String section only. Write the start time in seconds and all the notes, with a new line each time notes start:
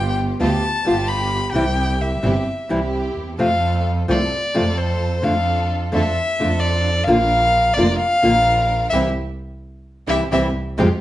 Already playing: B3 F4 G4
0.41 B3 F4 G4
0.86 B3 F4 G4
1.54 C4 E4 G4
2.24 C4 E4 G4
2.70 C4 E4 G4
3.39 C4 F4 A4
4.09 C4 F4 A4
4.56 C4 F4 A4
5.25 D4 F4 A4
5.95 D4 F4 A4
6.40 D4 F4 A4
7.09 D4 F4 A#4
7.77 D4 F4 A#4
8.24 D4 F4 A#4
8.93 C4 E4 G4
10.08 C4 E4 G4
10.31 C4 E4 G4
10.78 G#3 F4 G4